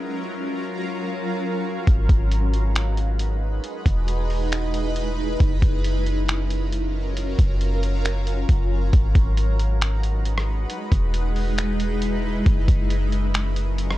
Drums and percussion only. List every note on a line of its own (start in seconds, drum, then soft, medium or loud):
1.87 kick loud
1.87 closed hi-hat medium
2.09 kick loud
2.09 closed hi-hat medium
2.31 closed hi-hat medium
2.54 closed hi-hat medium
2.75 finger snap loud
2.75 closed hi-hat medium
2.97 closed hi-hat medium
3.19 closed hi-hat medium
3.64 closed hi-hat medium
3.86 kick loud
3.86 closed hi-hat medium
4.08 closed hi-hat medium
4.30 open hi-hat medium
4.52 finger snap loud
4.52 closed hi-hat medium
4.74 closed hi-hat medium
4.96 closed hi-hat medium
5.40 kick loud
5.40 closed hi-hat medium
5.62 kick loud
5.62 closed hi-hat medium
5.84 closed hi-hat medium
6.07 closed hi-hat medium
6.28 finger snap loud
6.28 closed hi-hat medium
6.50 closed hi-hat medium
6.72 closed hi-hat medium
7.17 closed hi-hat medium
7.39 kick loud
7.39 closed hi-hat medium
7.61 closed hi-hat medium
7.83 closed hi-hat medium
8.05 finger snap loud
8.05 closed hi-hat medium
8.27 closed hi-hat medium
8.49 kick medium
8.49 closed hi-hat medium
8.93 kick loud
8.93 closed hi-hat medium
9.15 kick loud
9.15 closed hi-hat medium
9.37 closed hi-hat medium
9.59 closed hi-hat medium
9.81 finger snap loud
9.81 closed hi-hat medium
10.03 closed hi-hat medium
10.25 closed hi-hat medium
10.38 cross-stick loud
10.70 closed hi-hat medium
10.92 kick loud
10.92 closed hi-hat medium
11.14 closed hi-hat medium
11.36 open hi-hat medium
11.58 finger snap loud
11.58 closed hi-hat medium
11.80 closed hi-hat medium
12.02 closed hi-hat medium
12.46 kick loud
12.46 closed hi-hat medium
12.68 kick loud
12.68 closed hi-hat medium
12.90 closed hi-hat medium
13.12 closed hi-hat medium
13.34 finger snap loud
13.34 closed hi-hat medium
13.56 closed hi-hat medium
13.78 closed hi-hat medium
13.91 cross-stick medium